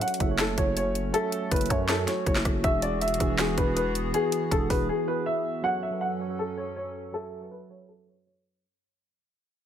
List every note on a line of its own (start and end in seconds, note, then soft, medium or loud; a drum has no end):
0.00 0.18 F#3 loud
0.00 2.61 A3 medium
0.00 2.61 C#4 medium
0.00 0.19 F#4 medium
0.00 5.60 F#4 medium
0.00 0.20 A4 medium
0.00 0.31 C#5 loud
0.00 0.37 F#5 medium
0.00 closed hi-hat medium
0.08 closed hi-hat medium
0.14 closed hi-hat medium
0.18 0.56 F#1 loud
0.18 0.26 F#3 medium
0.18 0.26 F#4 medium
0.18 0.27 A4 medium
0.18 0.27 E5 medium
0.18 kick medium
0.18 closed hi-hat medium
0.28 0.48 F#3 medium
0.28 0.48 F#4 medium
0.28 0.49 A4 medium
0.28 0.49 C#5 medium
0.39 0.54 A4 medium
0.39 snare loud
0.39 clap medium
0.39 closed hi-hat medium
0.56 1.12 F#1 loud
0.56 0.94 F#3 medium
0.56 0.95 F#4 medium
0.56 0.95 A4 medium
0.56 0.73 C#5 medium
0.56 0.96 C#5 medium
0.56 kick loud
0.56 closed hi-hat medium
0.77 1.12 C#5 medium
0.77 closed hi-hat medium
0.95 closed hi-hat medium
1.12 1.51 F#3 loud
1.12 1.51 F#4 medium
1.12 1.49 A4 loud
1.12 1.52 A4 medium
1.12 1.52 E5 loud
1.12 closed hi-hat medium
1.32 closed hi-hat medium
1.51 1.69 F#1 loud
1.51 1.67 B4 medium
1.51 kick loud
1.51 closed hi-hat medium
1.56 closed hi-hat medium
1.61 closed hi-hat medium
1.66 1.94 F#3 medium
1.66 1.95 F#4 medium
1.66 1.85 C#5 medium
1.66 closed hi-hat soft
1.70 2.06 F#2 loud
1.70 1.95 A4 medium
1.70 1.96 C#5 medium
1.70 kick medium
1.70 closed hi-hat medium
1.89 2.05 A4 medium
1.89 snare loud
1.89 clap medium
1.89 closed hi-hat medium
2.06 2.44 F#3 medium
2.06 2.45 F#4 medium
2.06 2.45 A4 medium
2.06 2.23 C#5 medium
2.06 2.46 C#5 medium
2.06 snare medium
2.06 closed hi-hat medium
2.26 2.44 F#1 loud
2.26 2.41 C#5 medium
2.26 kick loud
2.26 closed hi-hat medium
2.35 snare medium
2.35 clap medium
2.45 2.63 F#1 loud
2.45 kick loud
2.45 cross-stick medium
2.45 closed hi-hat medium
2.62 3.18 E1 loud
2.62 3.01 E3 loud
2.62 5.61 E3 medium
2.62 5.61 B3 medium
2.62 3.01 E4 loud
2.62 3.02 F#4 medium
2.62 5.61 G#4 medium
2.62 3.02 G#4 loud
2.62 2.79 E5 loud
2.62 kick loud
2.62 closed hi-hat medium
2.82 2.98 D5 medium
2.82 closed hi-hat medium
3.01 3.37 E5 medium
3.01 closed hi-hat medium
3.08 closed hi-hat medium
3.14 closed hi-hat medium
3.18 3.56 E1 loud
3.18 3.26 E3 medium
3.18 3.26 E4 medium
3.18 3.27 F#4 medium
3.18 3.27 G#4 medium
3.18 kick medium
3.18 closed hi-hat medium
3.28 3.48 E3 medium
3.28 3.48 E4 medium
3.28 3.49 F#4 medium
3.28 3.49 B4 medium
3.39 3.54 G#4 medium
3.39 snare loud
3.39 clap medium
3.39 closed hi-hat medium
3.56 4.12 E1 loud
3.56 3.94 E3 medium
3.56 3.95 E4 medium
3.56 3.95 F#4 medium
3.56 3.73 B4 medium
3.56 3.96 B4 medium
3.56 kick loud
3.56 closed hi-hat medium
3.76 4.12 B4 medium
3.76 closed hi-hat medium
3.95 closed hi-hat medium
4.12 4.51 E3 loud
4.12 4.51 E4 medium
4.12 4.52 F#4 medium
4.12 4.49 G#4 loud
4.12 4.52 B4 loud
4.12 closed hi-hat medium
4.32 closed hi-hat medium
4.51 4.69 E1 loud
4.51 4.67 A4 medium
4.51 kick loud
4.51 closed hi-hat medium
4.68 4.89 E1 loud
4.68 4.94 E3 medium
4.68 4.95 E4 medium
4.68 4.95 F#4 medium
4.68 4.96 G#4 medium
4.68 4.85 B4 medium
4.68 kick medium
4.68 open hi-hat medium
4.89 5.04 G#4 medium
5.06 5.44 E3 medium
5.06 5.45 E4 medium
5.06 5.45 F#4 medium
5.06 5.46 G#4 medium
5.06 5.23 B4 medium
5.26 5.61 E5 medium
5.62 8.61 F#2 medium
5.62 5.82 F#3 loud
5.62 8.61 F#3 medium
5.62 8.61 C#4 medium
5.62 5.82 F#4 medium
5.62 8.61 A4 medium
5.62 5.83 A4 medium
5.62 5.83 C#5 loud
5.62 5.79 F#5 loud
5.83 5.98 E5 medium
5.90 6.10 F#3 medium
5.90 6.10 F#4 medium
5.90 6.11 A4 medium
5.90 6.11 B4 medium
6.01 6.36 F#5 medium
6.19 6.26 F#3 medium
6.19 6.26 F#4 medium
6.19 6.27 A4 medium
6.19 6.27 C#5 medium
6.28 6.79 F#3 medium
6.28 6.79 F#4 medium
6.28 6.80 A4 medium
6.28 6.80 C#5 medium
6.39 6.54 A4 medium
6.57 6.73 C#5 medium
6.76 7.12 C#5 medium
7.12 7.32 F#3 loud
7.12 7.32 F#4 medium
7.12 7.49 A4 loud
7.12 7.33 A4 medium
7.12 7.33 E5 loud
7.40 7.60 F#3 medium
7.40 7.61 F#4 medium
7.40 7.61 A4 medium
7.40 7.62 B4 medium
7.51 7.66 B4 medium
7.69 7.94 F#3 medium
7.69 7.95 F#4 medium
7.69 7.95 A4 medium
7.69 7.85 C#5 medium
7.69 7.96 C#5 medium
7.88 8.04 A4 medium
8.06 8.44 F#3 medium
8.06 8.45 F#4 medium
8.06 8.45 A4 medium
8.06 8.46 B4 medium
8.06 8.23 C#5 medium
8.26 8.41 C#5 medium